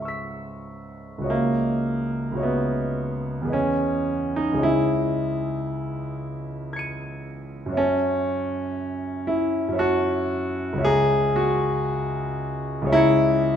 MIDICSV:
0, 0, Header, 1, 2, 480
1, 0, Start_track
1, 0, Tempo, 1324503
1, 472, Time_signature, 3, 2, 24, 8
1, 472, Tempo, 1111111
1, 1912, Tempo, 1047120
1, 3352, Tempo, 1011804
1, 4312, Tempo, 1050788
1, 6031, End_track
2, 0, Start_track
2, 0, Title_t, "Grand piano"
2, 0, Program_c, 0, 0
2, 0, Control_c, 0, 64, 127
2, 0, Note_on_c, 0, 37, 42
2, 0, Note_on_c, 0, 44, 31
2, 0, Note_on_c, 0, 76, 27
2, 8, Note_on_c, 0, 85, 27
2, 19, Note_on_c, 0, 88, 28
2, 30, Note_on_c, 0, 95, 28
2, 423, Note_off_c, 0, 37, 0
2, 429, Note_on_c, 0, 37, 44
2, 441, Note_on_c, 0, 66, 36
2, 449, Note_on_c, 0, 73, 37
2, 457, Note_on_c, 0, 75, 35
2, 460, Note_off_c, 0, 76, 0
2, 466, Note_off_c, 0, 85, 0
2, 467, Note_on_c, 0, 76, 37
2, 471, Note_off_c, 0, 44, 0
2, 471, Note_off_c, 0, 88, 0
2, 471, Note_on_c, 0, 58, 74
2, 477, Note_off_c, 0, 95, 0
2, 479, Control_c, 0, 64, 0
2, 560, Control_c, 0, 64, 127
2, 904, Note_off_c, 0, 37, 0
2, 911, Note_on_c, 0, 37, 44
2, 917, Note_off_c, 0, 66, 0
2, 924, Note_on_c, 0, 66, 36
2, 926, Note_off_c, 0, 73, 0
2, 933, Note_on_c, 0, 73, 37
2, 938, Note_off_c, 0, 75, 0
2, 944, Note_on_c, 0, 75, 35
2, 945, Note_off_c, 0, 76, 0
2, 957, Note_on_c, 0, 76, 37
2, 959, Note_on_c, 0, 59, 63
2, 962, Note_off_c, 0, 58, 0
2, 1386, Note_on_c, 0, 40, 44
2, 1397, Note_off_c, 0, 37, 0
2, 1398, Note_on_c, 0, 68, 38
2, 1404, Note_off_c, 0, 66, 0
2, 1408, Note_off_c, 0, 73, 0
2, 1408, Note_on_c, 0, 71, 39
2, 1414, Note_off_c, 0, 75, 0
2, 1421, Note_off_c, 0, 76, 0
2, 1421, Note_on_c, 0, 75, 39
2, 1431, Note_on_c, 0, 80, 39
2, 1435, Note_on_c, 0, 61, 72
2, 1436, Note_off_c, 0, 59, 0
2, 1444, Control_c, 0, 64, 0
2, 1502, Control_c, 0, 64, 127
2, 1793, Note_off_c, 0, 61, 0
2, 1794, Note_on_c, 0, 63, 73
2, 1863, Note_on_c, 0, 37, 44
2, 1865, Note_off_c, 0, 68, 0
2, 1871, Note_off_c, 0, 40, 0
2, 1871, Note_on_c, 0, 68, 36
2, 1882, Note_off_c, 0, 71, 0
2, 1884, Note_on_c, 0, 73, 36
2, 1887, Note_off_c, 0, 75, 0
2, 1894, Note_off_c, 0, 80, 0
2, 1894, Note_on_c, 0, 75, 38
2, 1907, Note_on_c, 0, 80, 40
2, 1910, Note_on_c, 0, 64, 82
2, 1912, Note_off_c, 0, 63, 0
2, 1919, Control_c, 0, 64, 0
2, 1976, Control_c, 0, 64, 127
2, 2872, Note_on_c, 0, 92, 37
2, 2888, Note_on_c, 0, 97, 37
2, 2899, Note_on_c, 0, 99, 36
2, 3109, Note_off_c, 0, 64, 0
2, 3298, Note_on_c, 0, 42, 49
2, 3306, Note_off_c, 0, 37, 0
2, 3311, Note_off_c, 0, 68, 0
2, 3311, Note_on_c, 0, 66, 41
2, 3317, Note_off_c, 0, 73, 0
2, 3323, Note_off_c, 0, 75, 0
2, 3325, Note_on_c, 0, 73, 43
2, 3329, Note_off_c, 0, 80, 0
2, 3335, Note_off_c, 0, 92, 0
2, 3335, Note_on_c, 0, 76, 40
2, 3343, Note_off_c, 0, 97, 0
2, 3348, Note_on_c, 0, 81, 42
2, 3349, Note_off_c, 0, 99, 0
2, 3350, Note_on_c, 0, 61, 83
2, 3357, Control_c, 0, 64, 0
2, 3432, Control_c, 0, 64, 127
2, 4061, Note_on_c, 0, 64, 77
2, 4068, Note_off_c, 0, 61, 0
2, 4250, Note_off_c, 0, 42, 0
2, 4257, Note_on_c, 0, 42, 50
2, 4271, Note_off_c, 0, 73, 0
2, 4272, Note_off_c, 0, 66, 0
2, 4278, Note_on_c, 0, 73, 46
2, 4284, Note_off_c, 0, 76, 0
2, 4291, Note_off_c, 0, 81, 0
2, 4291, Note_on_c, 0, 76, 43
2, 4303, Note_on_c, 0, 81, 45
2, 4307, Note_off_c, 0, 64, 0
2, 4307, Note_on_c, 0, 66, 93
2, 4736, Note_on_c, 0, 37, 55
2, 4752, Note_off_c, 0, 73, 0
2, 4754, Note_off_c, 0, 42, 0
2, 4759, Note_on_c, 0, 73, 47
2, 4766, Note_off_c, 0, 76, 0
2, 4773, Note_on_c, 0, 76, 47
2, 4777, Note_off_c, 0, 81, 0
2, 4789, Note_on_c, 0, 68, 101
2, 4789, Note_on_c, 0, 82, 46
2, 4793, Note_off_c, 0, 66, 0
2, 4802, Control_c, 0, 64, 0
2, 4860, Control_c, 0, 64, 127
2, 5024, Note_on_c, 0, 66, 83
2, 5030, Note_off_c, 0, 68, 0
2, 5684, Note_off_c, 0, 37, 0
2, 5691, Note_on_c, 0, 37, 62
2, 5702, Note_on_c, 0, 68, 48
2, 5704, Note_off_c, 0, 73, 0
2, 5711, Note_on_c, 0, 73, 49
2, 5717, Note_off_c, 0, 76, 0
2, 5724, Note_on_c, 0, 76, 49
2, 5729, Note_off_c, 0, 82, 0
2, 5737, Note_on_c, 0, 82, 54
2, 5739, Note_on_c, 0, 64, 106
2, 5746, Note_off_c, 0, 66, 0
2, 5748, Note_on_c, 0, 92, 42
2, 5759, Note_on_c, 0, 97, 48
2, 6031, Note_off_c, 0, 37, 0
2, 6031, Note_off_c, 0, 64, 0
2, 6031, Note_off_c, 0, 68, 0
2, 6031, Note_off_c, 0, 73, 0
2, 6031, Note_off_c, 0, 76, 0
2, 6031, Note_off_c, 0, 82, 0
2, 6031, Note_off_c, 0, 92, 0
2, 6031, Note_off_c, 0, 97, 0
2, 6031, End_track
0, 0, End_of_file